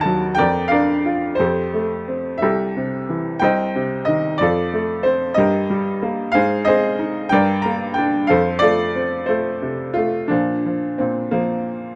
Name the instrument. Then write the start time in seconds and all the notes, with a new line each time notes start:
upright piano
Already playing: D#2 D#3 A#4 D#5 F#5 A#5
0.01 A5
0.05 F#3
0.35 F2 A#4 D5 G5
0.68 D4 A#4 D5 F5
1.05 F4
1.35 A4 C5
1.40 F2 G4
1.74 A3
2.08 C4
2.38 E5
2.42 C2 G4 A4
2.77 C3
3.09 E3
3.39 C2 C5 D#5 G5
3.75 C3
4.05 D#3 D#5
4.38 F2 A4 D5
4.42 F4
4.73 A3
5.03 C4 C5
5.34 G2 G4 D#5
5.38 A#4
5.70 G3
6.02 A#3
6.32 G#2 G#4 C5 F5
6.65 C4 G#4 C5 D#5
6.99 D#4
7.29 G2 A#4 D5 G5
7.62 A#3 A#5
7.94 G5
7.98 D4
8.27 F2 A4 C5 F5
8.59 A3 F4 A4 D5
8.95 C4
9.26 A3 F4 A4 C5
9.62 C3
9.94 A3 F4
10.28 A#2 F3 D4
10.66 F3
10.98 A#2 C4
11.31 F3 A#3